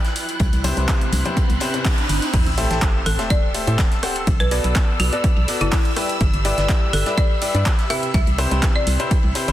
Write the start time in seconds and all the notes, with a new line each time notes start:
Already playing: E4 B4 G5 F#6, riser
0.05 snare, closed hi-hat, tambourine
0.16 open hi-hat, ride, tambourine
0.29 closed hi-hat, tambourine
0.39 C2, kick, closed hi-hat, ride, tambourine
0.51 C2 C4, closed hi-hat, ride, tambourine
0.64 C3 E4 G4 B4 C5, open hi-hat, ride, tambourine, high conga
0.77 C2 C3 E4 G4 B4 C5, closed hi-hat, tambourine
0.88 kick, snare, clap, closed hi-hat, ride, tambourine
1.01 closed hi-hat
1.06 B5
1.12 C2, open hi-hat, ride, tambourine, high conga
1.25 C3 E4 G4 B4 C5, closed hi-hat, tambourine, high conga
1.36 kick, closed hi-hat, ride, tambourine
1.49 C2, closed hi-hat, ride, tambourine
1.60 C3 E4 G4 B4 C5, snare, open hi-hat, ride, tambourine
1.74 C3 E4 G4 B4 C5, closed hi-hat, ride, tambourine
1.85 kick, snare, clap, closed hi-hat, open hi-hat, tambourine
1.98 closed hi-hat, tambourine
2.09 G1, open hi-hat, ride, tambourine
2.22 closed hi-hat, tambourine
2.33 A1 G4 E6, kick, closed hi-hat, crash, ride, sub drop
2.46 A1, closed hi-hat
2.55 A3 G4 A4 C5 E5 A5, open hi-hat, ride
2.71 A1 A3 G4 A4 C5 E5, snare, closed hi-hat
2.82 kick, snare, clap, closed hi-hat, ride
3.06 A1 A4, open hi-hat, ride
3.19 A3 G4 A4 C5 E5, snare, closed hi-hat
3.30 D5, kick, closed hi-hat, ride
3.55 A3 G4 A4 C5 E5, open hi-hat, ride
3.67 A2 A3 G4 A4 C5 E5, closed hi-hat, ride
3.79 kick, snare, clap, closed hi-hat, ride
3.91 snare, closed hi-hat
4.03 G4 A4 C5 F#5, cross-stick, open hi-hat, ride
4.16 closed hi-hat
4.27 B1 A4, kick, closed hi-hat, ride
4.37 B1 B4 D5, closed hi-hat, ride
4.51 B3 F#4 A4 B4 D5, open hi-hat, ride
4.64 B1 B3 F#4 A4 B4 D5 B5, closed hi-hat
4.75 kick, snare, clap, closed hi-hat, ride
5.00 B1 F#4, open hi-hat, ride
5.13 B3 F#4 A4 B4 D5, closed hi-hat
5.24 kick, closed hi-hat, ride
5.36 B1, ride
5.48 B3 F#4 A4 B4 D5, snare, open hi-hat, ride
5.61 F#1 B3 E4 F#4 A4 B4 D5, closed hi-hat, ride
5.71 kick, snare, clap, closed hi-hat, open hi-hat
5.85 closed hi-hat
5.96 G3 E4 G4 B4 E5, cross-stick, open hi-hat
6.01 E5
6.09 closed hi-hat
6.21 G1, kick, closed hi-hat, ride
6.34 G1, closed hi-hat
6.45 G3 E4 G4 B4 D5, open hi-hat, ride
6.58 G1 G3 E4 G4 B4 D5, snare, closed hi-hat
6.69 kick, snare, clap, closed hi-hat, ride
6.93 G1 A4, open hi-hat, ride
7.06 G3 E4 G4 B4 D5, snare, closed hi-hat
7.18 D5, kick, closed hi-hat, ride
7.42 G3 E4 G4 B4 D5, open hi-hat, ride
7.55 G2 G3 E4 G4 B4 D5, closed hi-hat, ride
7.66 kick, snare, clap, closed hi-hat, ride
7.78 snare, closed hi-hat
7.90 C3 E4 G4 B4 E5, cross-stick, open hi-hat, ride
8.03 closed hi-hat
8.14 C2 E4 E5, kick, closed hi-hat, ride
8.27 C2 C4, closed hi-hat, ride
8.38 C3 E4 G4 B4 C5, cross-stick, open hi-hat, ride
8.51 C2 C3 E4 G4 B4 C5, closed hi-hat
8.62 kick, snare, clap, closed hi-hat, ride
8.76 D5
8.87 C2, open hi-hat, ride
9.00 C3 E4 G4 B4 C5, closed hi-hat
9.11 kick, closed hi-hat, ride
9.23 C2, ride
9.35 C3 E4 G4 B4 C5, snare, open hi-hat, ride
9.48 G1 C3 E4 G4 B4 C5, closed hi-hat, ride